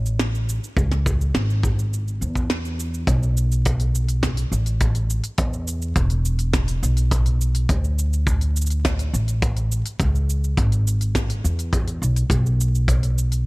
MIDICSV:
0, 0, Header, 1, 3, 480
1, 0, Start_track
1, 0, Tempo, 576923
1, 639, Time_signature, 4, 2, 24, 8
1, 11201, End_track
2, 0, Start_track
2, 0, Title_t, "Upright bass"
2, 0, Program_c, 0, 32
2, 0, Note_on_c, 0, 33, 86
2, 475, Note_off_c, 0, 33, 0
2, 637, Note_on_c, 0, 37, 90
2, 1075, Note_off_c, 0, 37, 0
2, 1117, Note_on_c, 0, 32, 96
2, 1839, Note_on_c, 0, 40, 70
2, 1852, Note_off_c, 0, 32, 0
2, 2516, Note_off_c, 0, 40, 0
2, 2555, Note_on_c, 0, 35, 91
2, 3714, Note_off_c, 0, 35, 0
2, 3757, Note_on_c, 0, 33, 88
2, 4315, Note_off_c, 0, 33, 0
2, 4478, Note_on_c, 0, 40, 93
2, 4915, Note_off_c, 0, 40, 0
2, 4956, Note_on_c, 0, 28, 93
2, 5634, Note_off_c, 0, 28, 0
2, 5680, Note_on_c, 0, 35, 90
2, 6356, Note_off_c, 0, 35, 0
2, 6399, Note_on_c, 0, 38, 97
2, 7556, Note_off_c, 0, 38, 0
2, 7600, Note_on_c, 0, 33, 91
2, 8156, Note_off_c, 0, 33, 0
2, 8317, Note_on_c, 0, 37, 86
2, 8755, Note_off_c, 0, 37, 0
2, 8798, Note_on_c, 0, 32, 98
2, 9475, Note_off_c, 0, 32, 0
2, 9521, Note_on_c, 0, 40, 91
2, 9957, Note_off_c, 0, 40, 0
2, 9998, Note_on_c, 0, 35, 90
2, 10185, Note_off_c, 0, 35, 0
2, 10231, Note_on_c, 0, 35, 88
2, 11201, Note_off_c, 0, 35, 0
2, 11201, End_track
3, 0, Start_track
3, 0, Title_t, "Drums"
3, 50, Note_on_c, 9, 82, 31
3, 133, Note_off_c, 9, 82, 0
3, 162, Note_on_c, 9, 38, 89
3, 169, Note_on_c, 9, 82, 40
3, 245, Note_off_c, 9, 38, 0
3, 252, Note_off_c, 9, 82, 0
3, 290, Note_on_c, 9, 82, 19
3, 374, Note_off_c, 9, 82, 0
3, 410, Note_on_c, 9, 82, 70
3, 493, Note_off_c, 9, 82, 0
3, 532, Note_on_c, 9, 82, 31
3, 615, Note_off_c, 9, 82, 0
3, 638, Note_on_c, 9, 36, 105
3, 651, Note_on_c, 9, 82, 41
3, 721, Note_off_c, 9, 36, 0
3, 734, Note_off_c, 9, 82, 0
3, 762, Note_on_c, 9, 38, 31
3, 769, Note_on_c, 9, 82, 21
3, 845, Note_off_c, 9, 38, 0
3, 853, Note_off_c, 9, 82, 0
3, 883, Note_on_c, 9, 36, 113
3, 889, Note_on_c, 9, 82, 72
3, 966, Note_off_c, 9, 36, 0
3, 972, Note_off_c, 9, 82, 0
3, 1009, Note_on_c, 9, 82, 29
3, 1092, Note_off_c, 9, 82, 0
3, 1120, Note_on_c, 9, 38, 95
3, 1128, Note_on_c, 9, 82, 43
3, 1204, Note_off_c, 9, 38, 0
3, 1211, Note_off_c, 9, 82, 0
3, 1250, Note_on_c, 9, 82, 19
3, 1333, Note_off_c, 9, 82, 0
3, 1360, Note_on_c, 9, 36, 97
3, 1369, Note_on_c, 9, 82, 76
3, 1443, Note_off_c, 9, 36, 0
3, 1453, Note_off_c, 9, 82, 0
3, 1490, Note_on_c, 9, 82, 32
3, 1573, Note_off_c, 9, 82, 0
3, 1610, Note_on_c, 9, 82, 40
3, 1693, Note_off_c, 9, 82, 0
3, 1730, Note_on_c, 9, 82, 21
3, 1813, Note_off_c, 9, 82, 0
3, 1848, Note_on_c, 9, 82, 74
3, 1931, Note_off_c, 9, 82, 0
3, 1959, Note_on_c, 9, 36, 56
3, 1968, Note_on_c, 9, 82, 32
3, 2042, Note_off_c, 9, 36, 0
3, 2051, Note_off_c, 9, 82, 0
3, 2079, Note_on_c, 9, 38, 94
3, 2086, Note_on_c, 9, 82, 39
3, 2162, Note_off_c, 9, 38, 0
3, 2170, Note_off_c, 9, 82, 0
3, 2207, Note_on_c, 9, 82, 19
3, 2290, Note_off_c, 9, 82, 0
3, 2328, Note_on_c, 9, 82, 72
3, 2411, Note_off_c, 9, 82, 0
3, 2447, Note_on_c, 9, 82, 31
3, 2531, Note_off_c, 9, 82, 0
3, 2556, Note_on_c, 9, 36, 109
3, 2560, Note_on_c, 9, 46, 68
3, 2567, Note_on_c, 9, 82, 43
3, 2639, Note_off_c, 9, 36, 0
3, 2643, Note_off_c, 9, 46, 0
3, 2651, Note_off_c, 9, 82, 0
3, 2687, Note_on_c, 9, 82, 22
3, 2771, Note_off_c, 9, 82, 0
3, 2806, Note_on_c, 9, 82, 76
3, 2889, Note_off_c, 9, 82, 0
3, 2927, Note_on_c, 9, 82, 32
3, 3011, Note_off_c, 9, 82, 0
3, 3040, Note_on_c, 9, 46, 68
3, 3044, Note_on_c, 9, 36, 93
3, 3047, Note_on_c, 9, 82, 43
3, 3123, Note_off_c, 9, 46, 0
3, 3127, Note_off_c, 9, 36, 0
3, 3130, Note_off_c, 9, 82, 0
3, 3159, Note_on_c, 9, 46, 31
3, 3167, Note_on_c, 9, 82, 21
3, 3242, Note_off_c, 9, 46, 0
3, 3250, Note_off_c, 9, 82, 0
3, 3287, Note_on_c, 9, 82, 76
3, 3370, Note_off_c, 9, 82, 0
3, 3399, Note_on_c, 9, 46, 34
3, 3406, Note_on_c, 9, 82, 32
3, 3482, Note_off_c, 9, 46, 0
3, 3489, Note_off_c, 9, 82, 0
3, 3518, Note_on_c, 9, 36, 106
3, 3519, Note_on_c, 9, 38, 80
3, 3519, Note_on_c, 9, 46, 63
3, 3527, Note_on_c, 9, 82, 41
3, 3601, Note_off_c, 9, 36, 0
3, 3602, Note_off_c, 9, 38, 0
3, 3602, Note_off_c, 9, 46, 0
3, 3610, Note_off_c, 9, 82, 0
3, 3638, Note_on_c, 9, 46, 44
3, 3645, Note_on_c, 9, 82, 22
3, 3721, Note_off_c, 9, 46, 0
3, 3729, Note_off_c, 9, 82, 0
3, 3766, Note_on_c, 9, 82, 77
3, 3849, Note_off_c, 9, 82, 0
3, 3878, Note_on_c, 9, 46, 30
3, 3885, Note_on_c, 9, 82, 32
3, 3961, Note_off_c, 9, 46, 0
3, 3968, Note_off_c, 9, 82, 0
3, 3999, Note_on_c, 9, 46, 67
3, 4000, Note_on_c, 9, 36, 92
3, 4006, Note_on_c, 9, 82, 42
3, 4082, Note_off_c, 9, 46, 0
3, 4084, Note_off_c, 9, 36, 0
3, 4089, Note_off_c, 9, 82, 0
3, 4118, Note_on_c, 9, 46, 29
3, 4125, Note_on_c, 9, 82, 22
3, 4201, Note_off_c, 9, 46, 0
3, 4209, Note_off_c, 9, 82, 0
3, 4244, Note_on_c, 9, 82, 74
3, 4328, Note_off_c, 9, 82, 0
3, 4357, Note_on_c, 9, 46, 48
3, 4364, Note_on_c, 9, 82, 31
3, 4440, Note_off_c, 9, 46, 0
3, 4447, Note_off_c, 9, 82, 0
3, 4475, Note_on_c, 9, 46, 66
3, 4478, Note_on_c, 9, 36, 104
3, 4482, Note_on_c, 9, 82, 45
3, 4558, Note_off_c, 9, 46, 0
3, 4561, Note_off_c, 9, 36, 0
3, 4565, Note_off_c, 9, 82, 0
3, 4605, Note_on_c, 9, 82, 22
3, 4688, Note_off_c, 9, 82, 0
3, 4722, Note_on_c, 9, 82, 73
3, 4805, Note_off_c, 9, 82, 0
3, 4842, Note_on_c, 9, 82, 33
3, 4926, Note_off_c, 9, 82, 0
3, 4957, Note_on_c, 9, 36, 97
3, 4957, Note_on_c, 9, 46, 64
3, 4964, Note_on_c, 9, 82, 44
3, 5040, Note_off_c, 9, 36, 0
3, 5040, Note_off_c, 9, 46, 0
3, 5047, Note_off_c, 9, 82, 0
3, 5075, Note_on_c, 9, 46, 30
3, 5082, Note_on_c, 9, 82, 22
3, 5158, Note_off_c, 9, 46, 0
3, 5166, Note_off_c, 9, 82, 0
3, 5202, Note_on_c, 9, 82, 82
3, 5286, Note_off_c, 9, 82, 0
3, 5315, Note_on_c, 9, 46, 32
3, 5323, Note_on_c, 9, 82, 34
3, 5398, Note_off_c, 9, 46, 0
3, 5406, Note_off_c, 9, 82, 0
3, 5437, Note_on_c, 9, 38, 75
3, 5437, Note_on_c, 9, 46, 66
3, 5438, Note_on_c, 9, 36, 111
3, 5444, Note_on_c, 9, 82, 46
3, 5520, Note_off_c, 9, 38, 0
3, 5520, Note_off_c, 9, 46, 0
3, 5521, Note_off_c, 9, 36, 0
3, 5528, Note_off_c, 9, 82, 0
3, 5558, Note_on_c, 9, 46, 47
3, 5565, Note_on_c, 9, 82, 24
3, 5641, Note_off_c, 9, 46, 0
3, 5649, Note_off_c, 9, 82, 0
3, 5685, Note_on_c, 9, 82, 81
3, 5769, Note_off_c, 9, 82, 0
3, 5798, Note_on_c, 9, 46, 30
3, 5805, Note_on_c, 9, 82, 35
3, 5881, Note_off_c, 9, 46, 0
3, 5888, Note_off_c, 9, 82, 0
3, 5918, Note_on_c, 9, 36, 111
3, 5920, Note_on_c, 9, 46, 62
3, 5927, Note_on_c, 9, 82, 45
3, 6002, Note_off_c, 9, 36, 0
3, 6003, Note_off_c, 9, 46, 0
3, 6010, Note_off_c, 9, 82, 0
3, 6039, Note_on_c, 9, 46, 31
3, 6046, Note_on_c, 9, 82, 21
3, 6122, Note_off_c, 9, 46, 0
3, 6130, Note_off_c, 9, 82, 0
3, 6166, Note_on_c, 9, 82, 81
3, 6250, Note_off_c, 9, 82, 0
3, 6280, Note_on_c, 9, 46, 42
3, 6287, Note_on_c, 9, 82, 34
3, 6363, Note_off_c, 9, 46, 0
3, 6370, Note_off_c, 9, 82, 0
3, 6399, Note_on_c, 9, 36, 107
3, 6399, Note_on_c, 9, 46, 67
3, 6406, Note_on_c, 9, 82, 44
3, 6482, Note_off_c, 9, 36, 0
3, 6482, Note_off_c, 9, 46, 0
3, 6490, Note_off_c, 9, 82, 0
3, 6526, Note_on_c, 9, 82, 22
3, 6610, Note_off_c, 9, 82, 0
3, 6646, Note_on_c, 9, 82, 81
3, 6729, Note_off_c, 9, 82, 0
3, 6767, Note_on_c, 9, 82, 35
3, 6851, Note_off_c, 9, 82, 0
3, 6879, Note_on_c, 9, 36, 99
3, 6886, Note_on_c, 9, 82, 47
3, 6962, Note_off_c, 9, 36, 0
3, 6969, Note_off_c, 9, 82, 0
3, 6999, Note_on_c, 9, 46, 28
3, 7007, Note_on_c, 9, 82, 22
3, 7082, Note_off_c, 9, 46, 0
3, 7090, Note_off_c, 9, 82, 0
3, 7126, Note_on_c, 9, 82, 79
3, 7168, Note_off_c, 9, 82, 0
3, 7168, Note_on_c, 9, 82, 65
3, 7208, Note_off_c, 9, 82, 0
3, 7208, Note_on_c, 9, 82, 51
3, 7242, Note_on_c, 9, 46, 30
3, 7249, Note_off_c, 9, 82, 0
3, 7249, Note_on_c, 9, 82, 38
3, 7325, Note_off_c, 9, 46, 0
3, 7332, Note_off_c, 9, 82, 0
3, 7362, Note_on_c, 9, 38, 77
3, 7362, Note_on_c, 9, 46, 58
3, 7363, Note_on_c, 9, 36, 110
3, 7369, Note_on_c, 9, 82, 46
3, 7445, Note_off_c, 9, 38, 0
3, 7445, Note_off_c, 9, 46, 0
3, 7446, Note_off_c, 9, 36, 0
3, 7452, Note_off_c, 9, 82, 0
3, 7481, Note_on_c, 9, 46, 42
3, 7488, Note_on_c, 9, 82, 25
3, 7564, Note_off_c, 9, 46, 0
3, 7572, Note_off_c, 9, 82, 0
3, 7607, Note_on_c, 9, 82, 79
3, 7690, Note_off_c, 9, 82, 0
3, 7720, Note_on_c, 9, 46, 29
3, 7728, Note_on_c, 9, 82, 37
3, 7804, Note_off_c, 9, 46, 0
3, 7811, Note_off_c, 9, 82, 0
3, 7839, Note_on_c, 9, 46, 58
3, 7840, Note_on_c, 9, 36, 114
3, 7847, Note_on_c, 9, 82, 48
3, 7922, Note_off_c, 9, 46, 0
3, 7923, Note_off_c, 9, 36, 0
3, 7930, Note_off_c, 9, 82, 0
3, 7959, Note_on_c, 9, 46, 30
3, 7966, Note_on_c, 9, 82, 22
3, 8042, Note_off_c, 9, 46, 0
3, 8049, Note_off_c, 9, 82, 0
3, 8086, Note_on_c, 9, 82, 81
3, 8169, Note_off_c, 9, 82, 0
3, 8200, Note_on_c, 9, 46, 45
3, 8208, Note_on_c, 9, 82, 37
3, 8284, Note_off_c, 9, 46, 0
3, 8291, Note_off_c, 9, 82, 0
3, 8317, Note_on_c, 9, 36, 112
3, 8319, Note_on_c, 9, 46, 63
3, 8326, Note_on_c, 9, 82, 43
3, 8400, Note_off_c, 9, 36, 0
3, 8402, Note_off_c, 9, 46, 0
3, 8410, Note_off_c, 9, 82, 0
3, 8448, Note_on_c, 9, 82, 23
3, 8532, Note_off_c, 9, 82, 0
3, 8567, Note_on_c, 9, 82, 83
3, 8650, Note_off_c, 9, 82, 0
3, 8688, Note_on_c, 9, 82, 32
3, 8771, Note_off_c, 9, 82, 0
3, 8798, Note_on_c, 9, 36, 110
3, 8799, Note_on_c, 9, 46, 66
3, 8881, Note_off_c, 9, 36, 0
3, 8883, Note_off_c, 9, 46, 0
3, 8920, Note_on_c, 9, 46, 27
3, 8928, Note_on_c, 9, 82, 22
3, 9003, Note_off_c, 9, 46, 0
3, 9011, Note_off_c, 9, 82, 0
3, 9047, Note_on_c, 9, 82, 78
3, 9130, Note_off_c, 9, 82, 0
3, 9160, Note_on_c, 9, 46, 31
3, 9167, Note_on_c, 9, 82, 36
3, 9243, Note_off_c, 9, 46, 0
3, 9251, Note_off_c, 9, 82, 0
3, 9277, Note_on_c, 9, 36, 93
3, 9280, Note_on_c, 9, 38, 69
3, 9280, Note_on_c, 9, 46, 57
3, 9287, Note_on_c, 9, 82, 43
3, 9360, Note_off_c, 9, 36, 0
3, 9363, Note_off_c, 9, 38, 0
3, 9363, Note_off_c, 9, 46, 0
3, 9370, Note_off_c, 9, 82, 0
3, 9401, Note_on_c, 9, 46, 43
3, 9408, Note_on_c, 9, 82, 22
3, 9484, Note_off_c, 9, 46, 0
3, 9492, Note_off_c, 9, 82, 0
3, 9527, Note_on_c, 9, 82, 82
3, 9610, Note_off_c, 9, 82, 0
3, 9643, Note_on_c, 9, 46, 28
3, 9650, Note_on_c, 9, 82, 35
3, 9726, Note_off_c, 9, 46, 0
3, 9733, Note_off_c, 9, 82, 0
3, 9758, Note_on_c, 9, 36, 101
3, 9761, Note_on_c, 9, 46, 58
3, 9768, Note_on_c, 9, 82, 44
3, 9841, Note_off_c, 9, 36, 0
3, 9844, Note_off_c, 9, 46, 0
3, 9851, Note_off_c, 9, 82, 0
3, 9881, Note_on_c, 9, 46, 28
3, 9888, Note_on_c, 9, 82, 21
3, 9964, Note_off_c, 9, 46, 0
3, 9971, Note_off_c, 9, 82, 0
3, 10008, Note_on_c, 9, 82, 80
3, 10091, Note_off_c, 9, 82, 0
3, 10120, Note_on_c, 9, 46, 43
3, 10128, Note_on_c, 9, 82, 36
3, 10204, Note_off_c, 9, 46, 0
3, 10211, Note_off_c, 9, 82, 0
3, 10232, Note_on_c, 9, 36, 91
3, 10241, Note_on_c, 9, 46, 67
3, 10249, Note_on_c, 9, 82, 46
3, 10315, Note_off_c, 9, 36, 0
3, 10325, Note_off_c, 9, 46, 0
3, 10332, Note_off_c, 9, 82, 0
3, 10369, Note_on_c, 9, 82, 23
3, 10452, Note_off_c, 9, 82, 0
3, 10489, Note_on_c, 9, 82, 80
3, 10572, Note_off_c, 9, 82, 0
3, 10609, Note_on_c, 9, 82, 32
3, 10692, Note_off_c, 9, 82, 0
3, 10716, Note_on_c, 9, 36, 95
3, 10720, Note_on_c, 9, 46, 61
3, 10728, Note_on_c, 9, 82, 44
3, 10800, Note_off_c, 9, 36, 0
3, 10804, Note_off_c, 9, 46, 0
3, 10811, Note_off_c, 9, 82, 0
3, 10842, Note_on_c, 9, 46, 27
3, 10849, Note_on_c, 9, 82, 21
3, 10925, Note_off_c, 9, 46, 0
3, 10932, Note_off_c, 9, 82, 0
3, 10968, Note_on_c, 9, 82, 77
3, 11052, Note_off_c, 9, 82, 0
3, 11081, Note_on_c, 9, 46, 30
3, 11089, Note_on_c, 9, 82, 36
3, 11164, Note_off_c, 9, 46, 0
3, 11172, Note_off_c, 9, 82, 0
3, 11201, End_track
0, 0, End_of_file